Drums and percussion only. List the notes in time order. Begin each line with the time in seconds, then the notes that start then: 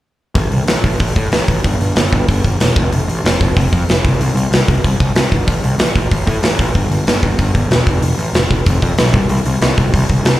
0.35 kick, open hi-hat
0.52 open hi-hat
0.68 snare, open hi-hat
0.84 kick, open hi-hat
1.00 kick, open hi-hat
1.16 kick, open hi-hat
1.32 snare, open hi-hat
1.48 kick, open hi-hat
1.64 kick, open hi-hat
1.81 open hi-hat
1.96 snare, open hi-hat
2.13 kick, open hi-hat
2.28 kick, open hi-hat
2.44 kick, open hi-hat
2.60 snare, open hi-hat
2.76 kick, open hi-hat
2.92 open hi-hat
3.09 open hi-hat
3.26 snare, open hi-hat
3.41 kick, open hi-hat
3.57 kick, open hi-hat
3.73 kick, open hi-hat
3.89 snare, open hi-hat
4.05 kick, open hi-hat
4.21 open hi-hat
4.37 open hi-hat
4.53 snare, open hi-hat
4.68 kick, open hi-hat
4.84 kick, open hi-hat
5.00 kick, open hi-hat
5.16 snare, open hi-hat
5.32 kick, open hi-hat
5.48 kick, open hi-hat
5.64 open hi-hat
5.79 snare, open hi-hat
5.95 kick, open hi-hat
6.11 kick, open hi-hat
6.27 kick, open hi-hat
6.43 snare, open hi-hat
6.59 kick, open hi-hat
6.75 kick, open hi-hat
6.92 open hi-hat
7.07 snare, open hi-hat
7.23 kick, open hi-hat
7.39 kick, open hi-hat
7.55 kick, open hi-hat
7.71 snare, open hi-hat
7.87 kick, open hi-hat
8.02 open hi-hat
8.19 open hi-hat
8.34 snare, open hi-hat
8.51 kick, open hi-hat
8.66 kick, open hi-hat
8.82 kick, open hi-hat
8.98 snare, open hi-hat
9.13 kick, open hi-hat
9.29 open hi-hat
9.46 open hi-hat
9.62 snare, open hi-hat
9.78 kick, open hi-hat
9.94 kick, open hi-hat
10.09 kick, open hi-hat
10.25 snare, open hi-hat